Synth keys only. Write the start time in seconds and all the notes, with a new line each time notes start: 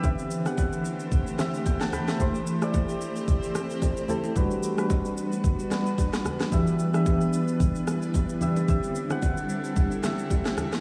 Already playing: G5 B5
0.03 D3 C4 G4 E5
0.45 D3 C4 G4 F#5
1.38 D3 C4 G4 E5
1.66 E5 G5
1.81 F#5 A5
1.93 G5 B5
2.08 E5 G5
2.19 A3 E4 G4 C5
2.61 A3 E4 G4 D5
4.08 A3 E4 G4 A4
4.35 G3 D4 F#4 B4
4.77 G3 D4 F#4 B4
5.70 G3 D4 F#4 B4
6.51 E3 D4 G4 E5
6.93 E3 D4 G4 E5
8.40 E3 D4 G4 E5
8.68 D3 C4 G4 E5
9.09 D3 C4 G4 F#5
10.03 D3 C4 G4 E5